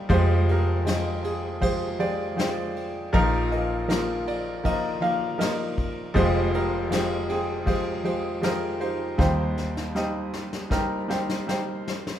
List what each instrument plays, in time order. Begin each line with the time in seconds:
Already playing: felt piano G3 C4 D#4 C5 D5 F5 G5
0.09 felt piano F1 F2 F3 G#3 G4 C5, fingered electric bass F2, kick, ride
0.49 felt piano G4 A#4, ride
0.85 felt piano F3 G#3 G4 D#5, snare, ride
1.24 felt piano G#4, ride
1.61 felt piano F3 G#3 G4 G#4 C5, kick, ride
1.99 felt piano F3 G#3 G4 C5 D5, ride
2.36 felt piano F3 G#3 C5 G5, snare, ride
2.76 ride
3.13 felt piano A#1 A#2 F3 A#3 D#4 A#4, fingered electric bass A#1, kick, ride
3.52 felt piano A#4 D#5, ride
3.88 felt piano F3 A#3 D#4 A#4, snare, ride
4.27 felt piano D5, ride
4.63 felt piano F3 A#3 D#4 A#4 D#5, kick, ride
5.00 felt piano F3 A#3 D#4 A#4 F5, ride
5.38 felt piano F3 A#3 D#4 A#4 D#5, snare, ride
5.78 kick, ride
6.14 felt piano F1 F2 F3 G#3 G4 C5, fingered electric bass F1, kick, ride
6.54 felt piano G4 A#4, ride
6.90 felt piano F3 G#3 G4 C5, snare, ride
7.29 felt piano C4 G#4, ride
7.65 felt piano F3 G#3 G4 C5, kick, ride
8.03 felt piano F3 G#3 G4 C5, ride
8.41 felt piano F3 G#3 G4 A#4 C5, snare, ride
8.81 felt piano D#4 G4 C5, ride
9.18 felt piano D#2 D#3 G3 C4 D#4 C5, fingered electric bass D#2, kick, snare
9.58 snare
9.77 snare
9.95 felt piano G3 C4 D#4 D#5, snare
10.33 snare
10.53 snare
10.70 felt piano G3 C4 D#4 A#4, kick, snare
11.08 felt piano G3 C4 D#4 C5, snare
11.29 snare
11.47 felt piano G3 C4 D#4 C5, snare
11.88 snare
12.07 snare